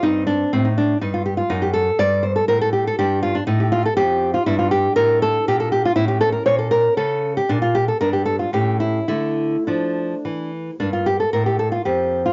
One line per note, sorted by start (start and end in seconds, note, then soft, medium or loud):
0.03 0.43 G2 medium
0.03 0.52 C4 soft
0.03 0.26 D#4 medium
0.27 0.51 D4 medium
0.53 0.93 A2 medium
0.53 0.66 C4 medium
0.65 0.77 D#4 medium
0.78 1.01 D4 medium
1.01 1.41 G2 medium
1.01 1.15 D#4 medium
1.14 1.25 F4 medium
1.26 1.37 G4 medium
1.37 1.50 F4 medium
1.50 1.89 F#2 medium
1.50 1.62 D#4 medium
1.62 1.73 G4 medium
1.73 1.98 A4 medium
1.99 2.40 G2 medium
1.99 2.24 D5 loud
2.23 2.35 C5 medium
2.36 2.48 A4 medium
2.48 2.89 A2 medium
2.48 2.61 A#4 medium
2.61 2.72 A4 medium
2.73 2.86 G4 medium
2.87 2.98 A4 medium
2.99 3.39 G2 medium
2.99 3.34 D4 soft
2.99 3.22 G4 medium
3.23 3.36 F4 medium
3.35 3.46 D4 medium
3.47 3.88 A2 medium
3.47 3.60 D#4 medium
3.60 3.71 G4 medium
3.72 3.85 F4 medium
3.85 3.96 A4 medium
3.97 4.37 F2 medium
3.97 4.33 G4 loud
4.34 4.46 F4 medium
4.46 4.87 G2 medium
4.46 5.93 D4 medium
4.46 4.58 E4 medium
4.59 4.71 F4 medium
4.71 4.95 G4 medium
4.96 5.37 A2 medium
4.96 5.20 A#4 loud
5.22 5.46 A4 loud
5.48 5.88 A#2 medium
5.48 5.59 G4 loud
5.60 5.71 A4 medium
5.72 5.84 G4 medium
5.85 5.95 F4 medium
5.96 6.37 A2 medium
5.96 7.46 C#4 soft
5.96 6.08 E4 loud
6.08 6.20 G4 medium
6.21 6.32 A4 medium
6.32 6.45 A#4 medium
6.46 6.87 A#2 medium
6.46 6.58 C#5 loud
6.58 6.70 A4 medium
6.71 6.96 A#4 medium
6.97 7.39 C#3 medium
6.97 7.35 A4 medium
7.37 7.50 G4 medium
7.49 7.91 A#2 medium
7.49 7.61 D4 medium
7.62 7.75 F4 medium
7.75 7.88 G4 medium
7.88 8.00 A4 medium
8.01 8.44 G2 medium
8.01 8.50 D4 soft
8.01 8.13 A#4 medium
8.13 8.25 G4 medium
8.26 8.39 A4 medium
8.39 8.53 F4 medium
8.53 8.99 A2 medium
8.53 9.06 C#4 soft
8.53 8.80 G4 medium
8.80 9.07 E4 medium
9.08 9.56 D3 medium
9.08 10.77 A3 soft
9.08 9.65 E4 medium
9.67 10.14 F3 medium
9.67 10.50 D4 medium
10.25 10.70 E3 medium
10.80 11.23 G2 medium
10.80 12.33 A#3 soft
10.80 10.93 D4 medium
10.93 11.07 F4 medium
11.06 11.19 G4 medium
11.20 11.33 A4 medium
11.33 11.76 A2 medium
11.33 11.46 A#4 medium
11.46 11.59 G4 medium
11.59 11.71 A4 medium
11.72 11.85 F4 medium
11.85 12.28 F2 soft
11.85 12.23 G4 medium
12.26 12.33 F4 medium